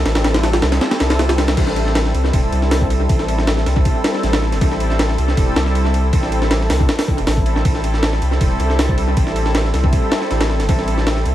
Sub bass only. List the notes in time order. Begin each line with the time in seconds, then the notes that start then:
0.05 A1
0.63 C2
1.00 C2
1.57 A1
2.14 C2
2.33 E1
2.52 C2
3.09 A1
3.66 C2
4.23 A1
4.52 G1
4.61 A1
5.18 C2
5.37 E1
5.56 C2
6.13 A1
6.70 C2
7.08 A1
7.18 E1
7.27 A1
7.65 A1
8.22 C2
8.41 E1
8.60 C2
9.17 A1
9.74 C2
10.31 A1
10.60 G1
10.69 A1
11.25 C2